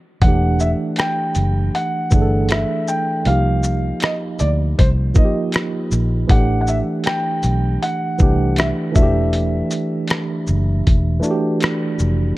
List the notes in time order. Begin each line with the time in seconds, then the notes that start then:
0.22 E1 E3 A3 F#5, kick, closed hi-hat
0.27 D4 G4
0.60 E5, shaker
0.96 G5, finger snap, cross-stick, closed hi-hat
1.35 F#1, closed hi-hat, shaker
1.75 F#5, closed hi-hat
2.11 G1 E3 A3 D4, kick, shaker
2.15 G#4
2.22 A4
2.49 E5, finger snap, cross-stick, closed hi-hat
2.88 G5, shaker
3.25 C2 F3 A#3 D#4 F5, closed hi-hat
3.30 G4
3.63 shaker
4.00 D#5, finger snap, cross-stick, closed hi-hat
4.39 D2 D5, closed hi-hat, shaker
4.79 C2 C5, kick, closed hi-hat
5.14 F3 A#3 D#4 D#5, kick, shaker
5.18 F4
5.25 G4
5.52 finger snap, cross-stick, closed hi-hat
5.91 A#1, shaker
6.28 A1 E3 A3 D4 F#5, kick, closed hi-hat
6.32 G4
6.61 F#5
6.67 E5, shaker
7.04 G5, finger snap, cross-stick, closed hi-hat
7.43 B1, closed hi-hat, shaker
7.82 F#5, closed hi-hat
8.18 C2 E3 A3 D4, kick, shaker
8.23 G4
8.56 E5, finger snap, cross-stick, closed hi-hat
8.92 E3 A3 D4 F#4 E5, kick, shaker
8.96 E1
9.03 G4
9.33 closed hi-hat
9.71 closed hi-hat, shaker
10.08 finger snap, cross-stick, closed hi-hat
10.47 F#1, shaker
10.87 E1, kick, closed hi-hat
11.19 E3 A3 D4, shaker
11.24 F#4
11.31 G4
11.60 finger snap, cross-stick, closed hi-hat
11.99 F1, shaker